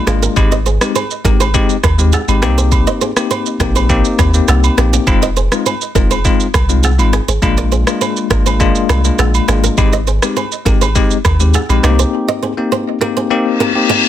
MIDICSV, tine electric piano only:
0, 0, Header, 1, 2, 480
1, 0, Start_track
1, 0, Tempo, 588235
1, 298, Time_signature, 4, 2, 24, 8
1, 11493, End_track
2, 0, Start_track
2, 0, Title_t, "Tine electric piano"
2, 0, Program_c, 0, 4
2, 56, Note_on_c, 0, 56, 76
2, 57, Note_on_c, 0, 58, 67
2, 59, Note_on_c, 0, 62, 69
2, 60, Note_on_c, 0, 65, 85
2, 279, Note_off_c, 0, 56, 0
2, 279, Note_off_c, 0, 58, 0
2, 280, Note_off_c, 0, 62, 0
2, 281, Note_off_c, 0, 65, 0
2, 295, Note_on_c, 0, 56, 90
2, 297, Note_on_c, 0, 60, 83
2, 299, Note_on_c, 0, 63, 86
2, 300, Note_on_c, 0, 67, 97
2, 472, Note_off_c, 0, 56, 0
2, 473, Note_off_c, 0, 60, 0
2, 474, Note_off_c, 0, 63, 0
2, 475, Note_off_c, 0, 67, 0
2, 661, Note_on_c, 0, 56, 77
2, 662, Note_on_c, 0, 60, 68
2, 664, Note_on_c, 0, 63, 70
2, 666, Note_on_c, 0, 67, 80
2, 832, Note_off_c, 0, 56, 0
2, 833, Note_off_c, 0, 60, 0
2, 833, Note_off_c, 0, 63, 0
2, 834, Note_off_c, 0, 67, 0
2, 1016, Note_on_c, 0, 56, 77
2, 1017, Note_on_c, 0, 60, 72
2, 1019, Note_on_c, 0, 63, 69
2, 1021, Note_on_c, 0, 67, 86
2, 1192, Note_off_c, 0, 56, 0
2, 1193, Note_off_c, 0, 60, 0
2, 1194, Note_off_c, 0, 63, 0
2, 1195, Note_off_c, 0, 67, 0
2, 1256, Note_on_c, 0, 56, 92
2, 1257, Note_on_c, 0, 60, 85
2, 1259, Note_on_c, 0, 63, 85
2, 1260, Note_on_c, 0, 67, 106
2, 1432, Note_off_c, 0, 56, 0
2, 1433, Note_off_c, 0, 60, 0
2, 1434, Note_off_c, 0, 63, 0
2, 1435, Note_off_c, 0, 67, 0
2, 1621, Note_on_c, 0, 56, 72
2, 1622, Note_on_c, 0, 60, 63
2, 1624, Note_on_c, 0, 63, 69
2, 1626, Note_on_c, 0, 67, 82
2, 1792, Note_off_c, 0, 56, 0
2, 1793, Note_off_c, 0, 60, 0
2, 1794, Note_off_c, 0, 63, 0
2, 1794, Note_off_c, 0, 67, 0
2, 1861, Note_on_c, 0, 56, 74
2, 1863, Note_on_c, 0, 60, 66
2, 1864, Note_on_c, 0, 63, 70
2, 1866, Note_on_c, 0, 67, 80
2, 1968, Note_off_c, 0, 60, 0
2, 1970, Note_off_c, 0, 63, 0
2, 1971, Note_off_c, 0, 67, 0
2, 1976, Note_on_c, 0, 58, 91
2, 1978, Note_on_c, 0, 60, 85
2, 1979, Note_on_c, 0, 63, 85
2, 1981, Note_on_c, 0, 67, 96
2, 2032, Note_off_c, 0, 56, 0
2, 2532, Note_off_c, 0, 58, 0
2, 2533, Note_off_c, 0, 60, 0
2, 2534, Note_off_c, 0, 63, 0
2, 2535, Note_off_c, 0, 67, 0
2, 2581, Note_on_c, 0, 58, 75
2, 2583, Note_on_c, 0, 60, 68
2, 2584, Note_on_c, 0, 63, 71
2, 2586, Note_on_c, 0, 67, 80
2, 2910, Note_off_c, 0, 58, 0
2, 2910, Note_off_c, 0, 60, 0
2, 2911, Note_off_c, 0, 63, 0
2, 2912, Note_off_c, 0, 67, 0
2, 2936, Note_on_c, 0, 58, 75
2, 2938, Note_on_c, 0, 60, 70
2, 2939, Note_on_c, 0, 63, 69
2, 2941, Note_on_c, 0, 67, 82
2, 3159, Note_off_c, 0, 58, 0
2, 3160, Note_off_c, 0, 60, 0
2, 3160, Note_off_c, 0, 63, 0
2, 3161, Note_off_c, 0, 67, 0
2, 3176, Note_on_c, 0, 58, 89
2, 3177, Note_on_c, 0, 60, 87
2, 3179, Note_on_c, 0, 63, 85
2, 3180, Note_on_c, 0, 67, 100
2, 3512, Note_off_c, 0, 58, 0
2, 3513, Note_off_c, 0, 60, 0
2, 3514, Note_off_c, 0, 63, 0
2, 3514, Note_off_c, 0, 67, 0
2, 3541, Note_on_c, 0, 58, 75
2, 3542, Note_on_c, 0, 60, 65
2, 3544, Note_on_c, 0, 63, 65
2, 3546, Note_on_c, 0, 67, 79
2, 3869, Note_off_c, 0, 58, 0
2, 3870, Note_off_c, 0, 60, 0
2, 3871, Note_off_c, 0, 63, 0
2, 3872, Note_off_c, 0, 67, 0
2, 3896, Note_on_c, 0, 58, 74
2, 3898, Note_on_c, 0, 60, 69
2, 3899, Note_on_c, 0, 63, 65
2, 3901, Note_on_c, 0, 67, 81
2, 4119, Note_off_c, 0, 58, 0
2, 4119, Note_off_c, 0, 60, 0
2, 4120, Note_off_c, 0, 63, 0
2, 4121, Note_off_c, 0, 67, 0
2, 4136, Note_on_c, 0, 56, 92
2, 4138, Note_on_c, 0, 60, 84
2, 4139, Note_on_c, 0, 63, 83
2, 4141, Note_on_c, 0, 65, 99
2, 4312, Note_off_c, 0, 56, 0
2, 4313, Note_off_c, 0, 60, 0
2, 4314, Note_off_c, 0, 63, 0
2, 4315, Note_off_c, 0, 65, 0
2, 4501, Note_on_c, 0, 56, 75
2, 4502, Note_on_c, 0, 60, 66
2, 4504, Note_on_c, 0, 63, 72
2, 4506, Note_on_c, 0, 65, 82
2, 4672, Note_off_c, 0, 56, 0
2, 4673, Note_off_c, 0, 60, 0
2, 4674, Note_off_c, 0, 63, 0
2, 4675, Note_off_c, 0, 65, 0
2, 4856, Note_on_c, 0, 56, 80
2, 4857, Note_on_c, 0, 60, 70
2, 4859, Note_on_c, 0, 63, 70
2, 4861, Note_on_c, 0, 65, 80
2, 5032, Note_off_c, 0, 56, 0
2, 5033, Note_off_c, 0, 60, 0
2, 5034, Note_off_c, 0, 63, 0
2, 5035, Note_off_c, 0, 65, 0
2, 5096, Note_on_c, 0, 56, 90
2, 5098, Note_on_c, 0, 60, 82
2, 5099, Note_on_c, 0, 63, 83
2, 5101, Note_on_c, 0, 65, 101
2, 5272, Note_off_c, 0, 56, 0
2, 5273, Note_off_c, 0, 60, 0
2, 5274, Note_off_c, 0, 63, 0
2, 5275, Note_off_c, 0, 65, 0
2, 5460, Note_on_c, 0, 56, 70
2, 5462, Note_on_c, 0, 60, 66
2, 5463, Note_on_c, 0, 63, 64
2, 5465, Note_on_c, 0, 65, 78
2, 5632, Note_off_c, 0, 56, 0
2, 5632, Note_off_c, 0, 60, 0
2, 5633, Note_off_c, 0, 63, 0
2, 5634, Note_off_c, 0, 65, 0
2, 5700, Note_on_c, 0, 56, 72
2, 5701, Note_on_c, 0, 60, 64
2, 5703, Note_on_c, 0, 63, 65
2, 5705, Note_on_c, 0, 65, 82
2, 5871, Note_off_c, 0, 56, 0
2, 5872, Note_off_c, 0, 60, 0
2, 5873, Note_off_c, 0, 63, 0
2, 5874, Note_off_c, 0, 65, 0
2, 6055, Note_on_c, 0, 56, 91
2, 6057, Note_on_c, 0, 58, 82
2, 6058, Note_on_c, 0, 62, 81
2, 6060, Note_on_c, 0, 65, 97
2, 6392, Note_off_c, 0, 56, 0
2, 6392, Note_off_c, 0, 58, 0
2, 6393, Note_off_c, 0, 62, 0
2, 6394, Note_off_c, 0, 65, 0
2, 6420, Note_on_c, 0, 56, 76
2, 6422, Note_on_c, 0, 58, 69
2, 6423, Note_on_c, 0, 62, 70
2, 6425, Note_on_c, 0, 65, 83
2, 6749, Note_off_c, 0, 56, 0
2, 6750, Note_off_c, 0, 58, 0
2, 6751, Note_off_c, 0, 62, 0
2, 6751, Note_off_c, 0, 65, 0
2, 6776, Note_on_c, 0, 56, 77
2, 6777, Note_on_c, 0, 58, 72
2, 6779, Note_on_c, 0, 62, 72
2, 6780, Note_on_c, 0, 65, 85
2, 6999, Note_off_c, 0, 56, 0
2, 6999, Note_off_c, 0, 58, 0
2, 7000, Note_off_c, 0, 62, 0
2, 7001, Note_off_c, 0, 65, 0
2, 7015, Note_on_c, 0, 56, 94
2, 7017, Note_on_c, 0, 58, 84
2, 7019, Note_on_c, 0, 62, 84
2, 7020, Note_on_c, 0, 65, 103
2, 7352, Note_off_c, 0, 56, 0
2, 7352, Note_off_c, 0, 58, 0
2, 7353, Note_off_c, 0, 62, 0
2, 7354, Note_off_c, 0, 65, 0
2, 7380, Note_on_c, 0, 56, 74
2, 7381, Note_on_c, 0, 58, 65
2, 7383, Note_on_c, 0, 62, 64
2, 7385, Note_on_c, 0, 65, 75
2, 7709, Note_off_c, 0, 56, 0
2, 7710, Note_off_c, 0, 58, 0
2, 7711, Note_off_c, 0, 62, 0
2, 7712, Note_off_c, 0, 65, 0
2, 7735, Note_on_c, 0, 56, 74
2, 7737, Note_on_c, 0, 58, 69
2, 7739, Note_on_c, 0, 62, 71
2, 7740, Note_on_c, 0, 65, 84
2, 7958, Note_off_c, 0, 56, 0
2, 7959, Note_off_c, 0, 58, 0
2, 7960, Note_off_c, 0, 62, 0
2, 7961, Note_off_c, 0, 65, 0
2, 7976, Note_on_c, 0, 56, 89
2, 7977, Note_on_c, 0, 60, 83
2, 7979, Note_on_c, 0, 63, 86
2, 7980, Note_on_c, 0, 67, 98
2, 8152, Note_off_c, 0, 56, 0
2, 8153, Note_off_c, 0, 60, 0
2, 8154, Note_off_c, 0, 63, 0
2, 8155, Note_off_c, 0, 67, 0
2, 8341, Note_on_c, 0, 56, 77
2, 8342, Note_on_c, 0, 60, 72
2, 8344, Note_on_c, 0, 63, 68
2, 8345, Note_on_c, 0, 67, 83
2, 8512, Note_off_c, 0, 56, 0
2, 8513, Note_off_c, 0, 60, 0
2, 8513, Note_off_c, 0, 63, 0
2, 8514, Note_off_c, 0, 67, 0
2, 8695, Note_on_c, 0, 56, 77
2, 8697, Note_on_c, 0, 60, 69
2, 8699, Note_on_c, 0, 63, 70
2, 8700, Note_on_c, 0, 67, 84
2, 8872, Note_off_c, 0, 56, 0
2, 8873, Note_off_c, 0, 60, 0
2, 8874, Note_off_c, 0, 63, 0
2, 8874, Note_off_c, 0, 67, 0
2, 8936, Note_on_c, 0, 56, 93
2, 8937, Note_on_c, 0, 60, 81
2, 8939, Note_on_c, 0, 63, 86
2, 8941, Note_on_c, 0, 67, 98
2, 9112, Note_off_c, 0, 56, 0
2, 9113, Note_off_c, 0, 60, 0
2, 9114, Note_off_c, 0, 63, 0
2, 9115, Note_off_c, 0, 67, 0
2, 9300, Note_on_c, 0, 56, 71
2, 9302, Note_on_c, 0, 60, 66
2, 9304, Note_on_c, 0, 63, 65
2, 9306, Note_on_c, 0, 67, 80
2, 9472, Note_off_c, 0, 56, 0
2, 9473, Note_off_c, 0, 60, 0
2, 9474, Note_off_c, 0, 63, 0
2, 9474, Note_off_c, 0, 67, 0
2, 9541, Note_on_c, 0, 56, 75
2, 9543, Note_on_c, 0, 60, 66
2, 9544, Note_on_c, 0, 63, 69
2, 9546, Note_on_c, 0, 67, 83
2, 9648, Note_off_c, 0, 60, 0
2, 9650, Note_off_c, 0, 63, 0
2, 9651, Note_off_c, 0, 67, 0
2, 9656, Note_on_c, 0, 58, 94
2, 9658, Note_on_c, 0, 60, 84
2, 9659, Note_on_c, 0, 63, 83
2, 9661, Note_on_c, 0, 67, 99
2, 9712, Note_off_c, 0, 56, 0
2, 10212, Note_off_c, 0, 58, 0
2, 10213, Note_off_c, 0, 60, 0
2, 10214, Note_off_c, 0, 63, 0
2, 10215, Note_off_c, 0, 67, 0
2, 10261, Note_on_c, 0, 58, 77
2, 10262, Note_on_c, 0, 60, 67
2, 10264, Note_on_c, 0, 63, 69
2, 10265, Note_on_c, 0, 67, 84
2, 10589, Note_off_c, 0, 58, 0
2, 10590, Note_off_c, 0, 60, 0
2, 10591, Note_off_c, 0, 63, 0
2, 10592, Note_off_c, 0, 67, 0
2, 10616, Note_on_c, 0, 58, 78
2, 10617, Note_on_c, 0, 60, 67
2, 10619, Note_on_c, 0, 63, 69
2, 10620, Note_on_c, 0, 67, 83
2, 10838, Note_off_c, 0, 58, 0
2, 10839, Note_off_c, 0, 60, 0
2, 10840, Note_off_c, 0, 63, 0
2, 10841, Note_off_c, 0, 67, 0
2, 10856, Note_on_c, 0, 58, 90
2, 10858, Note_on_c, 0, 60, 84
2, 10859, Note_on_c, 0, 63, 85
2, 10861, Note_on_c, 0, 67, 98
2, 11192, Note_off_c, 0, 58, 0
2, 11193, Note_off_c, 0, 60, 0
2, 11194, Note_off_c, 0, 63, 0
2, 11194, Note_off_c, 0, 67, 0
2, 11220, Note_on_c, 0, 58, 69
2, 11222, Note_on_c, 0, 60, 66
2, 11224, Note_on_c, 0, 63, 67
2, 11225, Note_on_c, 0, 67, 82
2, 11493, Note_off_c, 0, 58, 0
2, 11493, Note_off_c, 0, 60, 0
2, 11493, Note_off_c, 0, 63, 0
2, 11493, Note_off_c, 0, 67, 0
2, 11493, End_track
0, 0, End_of_file